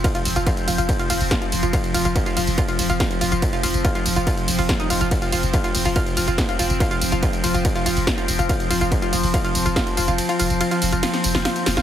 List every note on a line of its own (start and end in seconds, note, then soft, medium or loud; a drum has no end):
0.00 11.82 F3 medium
0.00 11.82 C4 medium
0.04 0.11 F4 medium
0.04 kick loud
0.04 closed hi-hat loud
0.04 ride medium
0.04 tambourine soft
0.15 0.22 F4 medium
0.15 closed hi-hat medium
0.15 tambourine soft
0.25 0.35 F1 loud
0.25 open hi-hat loud
0.25 tambourine medium
0.36 0.46 F1 medium
0.36 0.43 F4 medium
0.36 closed hi-hat medium
0.36 tambourine soft
0.47 0.53 F4 medium
0.47 kick loud
0.47 closed hi-hat loud
0.47 ride medium
0.47 tambourine soft
0.57 closed hi-hat medium
0.57 tambourine soft
0.68 0.78 F1 loud
0.68 0.75 F4 medium
0.68 open hi-hat loud
0.68 tambourine medium
0.78 0.89 F1 medium
0.78 0.85 F4 medium
0.78 closed hi-hat medium
0.78 tambourine soft
0.89 kick loud
0.89 closed hi-hat loud
0.89 ride medium
0.89 tambourine soft
0.99 1.06 F4 medium
0.99 closed hi-hat medium
0.99 tambourine soft
1.10 1.20 F1 loud
1.10 1.17 F4 medium
1.10 open hi-hat loud
1.10 tambourine medium
1.20 1.31 F1 medium
1.20 open hi-hat medium
1.20 tambourine soft
1.31 1.38 F4 medium
1.31 kick loud
1.31 snare loud
1.31 ride medium
1.31 tambourine soft
1.42 1.48 F4 medium
1.42 closed hi-hat medium
1.42 tambourine soft
1.52 1.62 F1 loud
1.52 open hi-hat loud
1.52 tambourine medium
1.63 1.73 F1 medium
1.63 1.70 F4 medium
1.63 closed hi-hat medium
1.63 tambourine soft
1.73 1.80 F4 medium
1.73 kick loud
1.73 closed hi-hat loud
1.73 ride medium
1.73 tambourine soft
1.84 closed hi-hat medium
1.84 tambourine soft
1.94 2.04 F1 loud
1.94 2.01 F4 medium
1.94 open hi-hat loud
1.94 tambourine medium
2.05 2.15 F1 medium
2.05 2.12 F4 medium
2.05 closed hi-hat medium
2.05 tambourine soft
2.16 kick loud
2.16 closed hi-hat medium
2.16 ride medium
2.16 tambourine soft
2.26 2.33 F4 medium
2.26 closed hi-hat medium
2.26 tambourine soft
2.37 2.47 F1 loud
2.37 2.44 F4 medium
2.37 open hi-hat loud
2.37 tambourine medium
2.47 2.58 F1 medium
2.47 open hi-hat medium
2.47 tambourine soft
2.58 2.65 F4 medium
2.58 kick loud
2.58 closed hi-hat loud
2.58 ride medium
2.58 tambourine soft
2.68 2.75 F4 medium
2.68 closed hi-hat medium
2.68 tambourine soft
2.79 2.89 F1 loud
2.79 open hi-hat loud
2.79 tambourine medium
2.90 3.00 F1 medium
2.90 2.96 F4 medium
2.90 closed hi-hat medium
2.90 tambourine soft
3.00 3.07 F4 medium
3.00 kick loud
3.00 snare loud
3.00 closed hi-hat medium
3.00 ride medium
3.00 tambourine soft
3.11 closed hi-hat medium
3.11 tambourine soft
3.21 3.31 F1 loud
3.21 3.28 F4 medium
3.21 open hi-hat loud
3.21 tambourine medium
3.32 3.42 F1 medium
3.32 3.39 F4 medium
3.32 closed hi-hat medium
3.32 tambourine soft
3.42 kick loud
3.42 closed hi-hat loud
3.42 ride medium
3.42 tambourine soft
3.53 3.60 F4 medium
3.53 closed hi-hat medium
3.53 tambourine soft
3.63 3.73 F1 loud
3.63 3.70 F4 medium
3.63 open hi-hat loud
3.63 tambourine medium
3.74 3.84 F1 medium
3.74 closed hi-hat medium
3.74 tambourine soft
3.85 3.91 F4 medium
3.85 kick loud
3.85 closed hi-hat loud
3.85 ride medium
3.85 tambourine soft
3.95 4.02 F4 medium
3.95 closed hi-hat medium
3.95 tambourine soft
4.06 4.16 F1 loud
4.06 open hi-hat loud
4.06 tambourine medium
4.16 4.27 F1 medium
4.16 4.23 F4 medium
4.16 closed hi-hat medium
4.16 tambourine soft
4.27 4.34 F4 medium
4.27 kick loud
4.27 closed hi-hat medium
4.27 ride medium
4.27 tambourine soft
4.38 closed hi-hat soft
4.38 tambourine soft
4.48 4.58 F1 loud
4.48 open hi-hat loud
4.48 tambourine medium
4.59 4.69 F1 medium
4.59 4.65 F4 medium
4.59 open hi-hat medium
4.59 tambourine soft
4.69 4.76 F4 medium
4.69 kick loud
4.69 snare loud
4.69 closed hi-hat medium
4.69 ride medium
4.69 tambourine soft
4.80 4.87 D#4 medium
4.80 closed hi-hat medium
4.80 tambourine soft
4.90 5.00 F1 medium
4.90 4.97 F4 medium
4.90 open hi-hat loud
4.90 tambourine medium
5.01 5.11 F1 medium
5.01 5.11 F4 medium
5.01 closed hi-hat medium
5.01 tambourine soft
5.11 kick loud
5.11 closed hi-hat loud
5.11 ride medium
5.11 tambourine soft
5.22 5.29 F4 medium
5.22 closed hi-hat medium
5.22 tambourine soft
5.32 5.43 F1 loud
5.32 5.39 F4 medium
5.32 open hi-hat loud
5.32 tambourine medium
5.43 5.53 F1 medium
5.43 closed hi-hat medium
5.43 tambourine soft
5.54 5.60 F4 medium
5.54 kick loud
5.54 closed hi-hat medium
5.54 ride medium
5.54 tambourine soft
5.64 5.71 F4 medium
5.64 closed hi-hat medium
5.64 tambourine soft
5.75 5.85 F1 loud
5.75 open hi-hat loud
5.75 tambourine medium
5.85 5.96 F1 medium
5.85 5.92 F4 medium
5.85 open hi-hat medium
5.85 tambourine soft
5.96 6.03 F4 medium
5.96 kick loud
5.96 closed hi-hat medium
5.96 ride medium
5.96 tambourine soft
6.07 closed hi-hat soft
6.07 tambourine soft
6.17 6.27 F1 loud
6.17 6.24 F4 medium
6.17 open hi-hat loud
6.17 tambourine medium
6.28 6.38 F1 medium
6.28 6.34 F4 medium
6.28 closed hi-hat medium
6.28 tambourine soft
6.38 kick loud
6.38 snare loud
6.38 closed hi-hat medium
6.38 ride medium
6.38 tambourine soft
6.49 6.55 F4 medium
6.49 closed hi-hat medium
6.49 tambourine soft
6.59 6.69 F1 medium
6.59 6.66 F4 medium
6.59 open hi-hat loud
6.59 tambourine medium
6.70 6.80 F1 medium
6.70 closed hi-hat medium
6.70 tambourine soft
6.80 6.87 F4 medium
6.80 kick loud
6.80 closed hi-hat medium
6.80 ride medium
6.80 tambourine soft
6.91 6.98 F4 medium
6.91 closed hi-hat soft
6.91 tambourine soft
7.01 7.12 F1 loud
7.01 open hi-hat loud
7.01 tambourine medium
7.12 7.22 F1 medium
7.12 7.19 F4 medium
7.12 closed hi-hat medium
7.12 tambourine soft
7.23 7.29 F4 medium
7.23 kick loud
7.23 closed hi-hat medium
7.23 ride medium
7.23 tambourine soft
7.33 closed hi-hat medium
7.33 tambourine soft
7.44 7.54 F1 loud
7.44 7.51 F4 medium
7.44 open hi-hat loud
7.44 tambourine medium
7.54 7.65 F1 medium
7.54 7.61 F4 medium
7.54 closed hi-hat medium
7.54 tambourine soft
7.65 kick loud
7.65 closed hi-hat loud
7.65 ride medium
7.65 tambourine soft
7.76 7.82 F4 medium
7.76 closed hi-hat soft
7.76 tambourine soft
7.86 7.96 F1 loud
7.86 7.93 F4 medium
7.86 open hi-hat loud
7.86 tambourine medium
7.97 8.07 F1 medium
7.97 open hi-hat medium
7.97 tambourine soft
8.07 8.14 F4 medium
8.07 kick loud
8.07 snare loud
8.07 closed hi-hat medium
8.07 ride medium
8.07 tambourine soft
8.18 8.25 F4 medium
8.18 closed hi-hat medium
8.18 tambourine soft
8.28 8.38 F1 loud
8.28 open hi-hat loud
8.28 tambourine medium
8.39 8.49 F1 medium
8.39 8.46 F4 medium
8.39 closed hi-hat soft
8.39 tambourine soft
8.49 8.56 F4 medium
8.49 kick loud
8.49 closed hi-hat medium
8.49 ride medium
8.49 tambourine soft
8.60 closed hi-hat medium
8.60 tambourine soft
8.70 8.81 F1 loud
8.70 8.77 F4 medium
8.70 open hi-hat loud
8.70 tambourine medium
8.81 8.91 F1 medium
8.81 8.88 F4 medium
8.81 closed hi-hat medium
8.81 tambourine soft
8.92 kick loud
8.92 closed hi-hat medium
8.92 ride medium
8.92 tambourine soft
9.02 9.09 F4 medium
9.02 closed hi-hat medium
9.02 tambourine soft
9.13 9.23 F1 loud
9.13 9.20 F4 medium
9.13 open hi-hat loud
9.13 tambourine medium
9.23 9.34 F1 medium
9.23 open hi-hat medium
9.23 tambourine soft
9.34 9.41 F4 medium
9.34 kick loud
9.34 closed hi-hat loud
9.34 ride medium
9.34 tambourine soft
9.45 9.51 F4 medium
9.45 closed hi-hat medium
9.45 tambourine soft
9.55 9.65 F1 loud
9.55 open hi-hat loud
9.55 tambourine medium
9.66 9.76 F1 medium
9.66 9.72 F4 medium
9.66 closed hi-hat medium
9.66 tambourine soft
9.76 9.83 F4 medium
9.76 kick loud
9.76 snare loud
9.76 closed hi-hat medium
9.76 ride medium
9.76 tambourine soft
9.87 closed hi-hat medium
9.87 tambourine soft
9.97 10.07 F1 loud
9.97 10.04 F4 medium
9.97 open hi-hat loud
9.97 tambourine medium
10.08 10.18 F1 medium
10.08 10.15 F4 medium
10.08 closed hi-hat medium
10.08 tambourine soft
10.18 closed hi-hat loud
10.18 ride medium
10.18 tambourine soft
10.29 10.36 F4 medium
10.29 closed hi-hat medium
10.29 tambourine soft
10.39 10.50 F1 loud
10.39 10.46 F4 medium
10.39 open hi-hat loud
10.39 tambourine medium
10.50 10.60 F1 medium
10.50 closed hi-hat medium
10.50 tambourine soft
10.61 10.67 F4 medium
10.61 closed hi-hat medium
10.61 ride medium
10.61 tambourine soft
10.71 10.78 F4 medium
10.71 closed hi-hat medium
10.71 tambourine soft
10.82 10.92 F1 loud
10.82 open hi-hat loud
10.82 tambourine medium
10.92 11.03 F1 medium
10.92 10.99 F4 medium
10.92 closed hi-hat medium
10.92 tambourine soft
11.03 11.10 F4 medium
11.03 snare medium
11.03 closed hi-hat medium
11.03 ride medium
11.03 tambourine soft
11.14 snare medium
11.14 closed hi-hat medium
11.14 tambourine soft
11.24 11.34 F1 loud
11.24 open hi-hat loud
11.24 tambourine medium
11.35 11.45 F1 medium
11.35 11.41 F4 medium
11.35 snare medium
11.35 open hi-hat medium
11.35 tambourine soft
11.45 11.52 F4 medium
11.45 snare medium
11.45 closed hi-hat medium
11.45 ride medium
11.45 tambourine soft
11.56 closed hi-hat medium
11.56 tambourine soft
11.66 11.76 F1 loud
11.66 11.73 F4 medium
11.66 snare loud
11.66 open hi-hat loud
11.66 tambourine medium
11.77 11.82 F1 medium
11.77 11.82 F4 medium
11.77 snare medium
11.77 closed hi-hat medium
11.77 tambourine soft